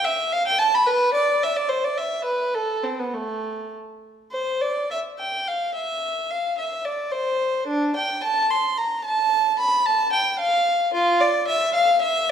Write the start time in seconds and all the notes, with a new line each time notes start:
0.04 E5
0.32 F5
0.47 G5
0.59 A5
0.75 B5
0.87 B4
1.14 D5
1.43 E5
1.57 D5
1.70 C5
1.85 D5
1.98 E5
2.25 B4
2.55 A4
2.84 C4
3.00 B3
3.14 A3
4.32 C5
4.62 D5
4.91 E5
5.19 G5
5.48 F5
5.75 E5
6.31 F5
6.58 E5
6.85 D5
7.12 C5
7.68 D4
7.96 G5
8.24 A5
8.51 C6
8.78 A#5
9.05 A5
9.59 B5
9.86 A5
10.13 G5
10.39 F5
10.94 F4
11.21 D5
11.48 E5
11.75 F5
12.02 E5